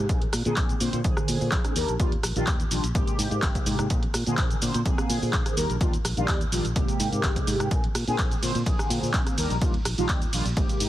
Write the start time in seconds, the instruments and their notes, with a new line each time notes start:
0.09 fingered electric bass A#1, analog polysynth D3 A#3 C4 G#4, kick, closed hi-hat, shaker
0.22 closed hi-hat
0.33 fingered electric bass A#2, cross-stick, open hi-hat, shaker
0.45 fingered electric bass A#2, analog polysynth D3 A#3 C4 G#4, closed hi-hat, shaker
0.56 fingered electric bass A#1, analog polysynth A#3, kick, clap, closed hi-hat, shaker
0.69 closed hi-hat, shaker
0.80 fingered electric bass A#2, analog polysynth D3 A#3 C4 C5, open hi-hat, shaker
0.93 fingered electric bass A#2, closed hi-hat, shaker
1.03 fingered electric bass A#1, analog polysynth D3 A#3 C4 G#4, kick, closed hi-hat, shaker
1.17 cross-stick, shaker
1.28 fingered electric bass A#2, open hi-hat, shaker
1.41 fingered electric bass A#2, shaker
1.52 fingered electric bass A#1, kick, clap, closed hi-hat, shaker
1.65 cross-stick, closed hi-hat, shaker
1.75 fingered electric bass D#2, analog polysynth D#3 G3 D4 A#4, open hi-hat, shaker
1.88 fingered electric bass A#1, closed hi-hat, shaker
1.99 fingered electric bass D#2, analog polysynth D#3 G3 D4 F4, kick, closed hi-hat, shaker
2.12 closed hi-hat
2.23 fingered electric bass A#1, cross-stick, open hi-hat, shaker
2.36 fingered electric bass A#1, analog polysynth D#3 G3 D4 F4, closed hi-hat, shaker
2.47 fingered electric bass D#2, analog polysynth G3, kick, clap, closed hi-hat, shaker
2.60 closed hi-hat, shaker
2.71 fingered electric bass A#1, analog polysynth D#3 G3 D4 F4, open hi-hat, shaker
2.84 fingered electric bass A#1, closed hi-hat, shaker
2.94 analog polysynth C3 G#3 A#3 G4, kick, closed hi-hat, shaker
3.07 muted fingered electric bass stroke, closed hi-hat, shaker
3.19 fingered electric bass G#2, open hi-hat, shaker
3.31 fingered electric bass G#2, closed hi-hat, shaker
3.42 fingered electric bass G#1, kick, clap, closed hi-hat, shaker
3.55 kick, closed hi-hat, shaker
3.66 fingered electric bass G#2, open hi-hat, shaker
3.79 fingered electric bass G#2, cross-stick, closed hi-hat, shaker
3.90 fingered electric bass A#1, analog polysynth D3 A#3 C4 G#4, kick, closed hi-hat, shaker
4.03 closed hi-hat
4.14 fingered electric bass A#2, cross-stick, open hi-hat, shaker
4.26 fingered electric bass A#2, analog polysynth D3 A#3 C4 G#4, closed hi-hat, shaker
4.37 fingered electric bass A#1, analog polysynth D3 A#3 C4 G#4, kick, clap, closed hi-hat, shaker
4.51 closed hi-hat, shaker
4.61 fingered electric bass A#2, analog polysynth D3 A#3 C4 C5, open hi-hat, shaker
4.74 fingered electric bass A#2, closed hi-hat, shaker
4.85 fingered electric bass A#1, analog polysynth D3 A#3 C4 G#4, kick, closed hi-hat, shaker
4.98 cross-stick, shaker
5.10 fingered electric bass A#2, open hi-hat, shaker
5.22 fingered electric bass A#2, shaker
5.33 fingered electric bass A#1, kick, clap, closed hi-hat, shaker
5.46 cross-stick, closed hi-hat, shaker
5.56 fingered electric bass D#2, analog polysynth D#3 G3 D4 A#4, open hi-hat, shaker
5.70 fingered electric bass A#1, closed hi-hat, shaker
5.80 fingered electric bass D#2, analog polysynth D#3 G3 D4 F4, kick, closed hi-hat, shaker
5.93 closed hi-hat, shaker
6.05 fingered electric bass A#1, cross-stick, open hi-hat, shaker
6.17 fingered electric bass A#1, analog polysynth D#3 G3 D4 F4, closed hi-hat, shaker
6.28 analog polysynth G3 D4 G4, kick, clap, closed hi-hat, shaker
6.41 closed hi-hat, shaker
6.52 fingered electric bass A#1, analog polysynth D#3 G3 D4 F4, open hi-hat, shaker
6.65 fingered electric bass A#1, closed hi-hat, shaker
6.75 fingered electric bass G#1, analog polysynth C3 G#3 A#3 G4, kick, closed hi-hat, shaker
6.88 muted fingered electric bass stroke, closed hi-hat, shaker
7.00 fingered electric bass G#2, open hi-hat, shaker
7.12 fingered electric bass G#2, closed hi-hat, shaker
7.23 fingered electric bass G#1, kick, clap, closed hi-hat, shaker
7.36 kick, closed hi-hat, shaker
7.47 fingered electric bass G#2, open hi-hat, shaker
7.60 fingered electric bass G#2, cross-stick, closed hi-hat, shaker
7.71 fingered electric bass A#1, analog polysynth D3 A#3 C4 G#4, kick, closed hi-hat, shaker
7.84 closed hi-hat
7.95 fingered electric bass A#2, cross-stick, open hi-hat, ride, shaker
8.07 fingered electric bass A#2, analog polysynth D3 A#3 C4 G#4, closed hi-hat, shaker
8.18 fingered electric bass A#1, kick, clap, closed hi-hat, shaker
8.31 closed hi-hat, shaker
8.42 fingered electric bass A#2, analog polysynth D3 A#3 C4 C5, open hi-hat, ride, shaker
8.55 fingered electric bass A#2, closed hi-hat, shaker
8.65 fingered electric bass A#1, analog polysynth D3 A#3 C4 G#4, kick, closed hi-hat, shaker
8.79 cross-stick, shaker
8.90 fingered electric bass A#2, open hi-hat, ride, shaker
9.03 fingered electric bass A#2, shaker
9.14 fingered electric bass A#1, kick, clap, closed hi-hat, shaker
9.27 cross-stick, closed hi-hat, shaker
9.37 fingered electric bass D#2, analog polysynth D#3 G3 D4 A#4, open hi-hat, ride, shaker
9.50 fingered electric bass A#1, closed hi-hat, shaker
9.61 fingered electric bass D#2, analog polysynth D#3 G3 D4 F4, kick, closed hi-hat, shaker
9.74 closed hi-hat
9.85 fingered electric bass A#1, cross-stick, open hi-hat, ride, shaker
9.97 fingered electric bass A#1, analog polysynth D#3 G3 D4 F4, closed hi-hat, shaker
10.09 fingered electric bass D#2, analog polysynth D#3 G3 D4 G4, kick, clap, closed hi-hat, shaker
10.22 closed hi-hat, shaker
10.32 fingered electric bass A#1, analog polysynth D#3 G3 D4 F4, open hi-hat, ride, shaker
10.45 fingered electric bass A#1, closed hi-hat, shaker
10.56 analog polysynth C3 G#3 A#3 G4, kick, closed hi-hat, shaker
10.69 closed hi-hat, shaker
10.80 fingered electric bass G#2, open hi-hat, ride, shaker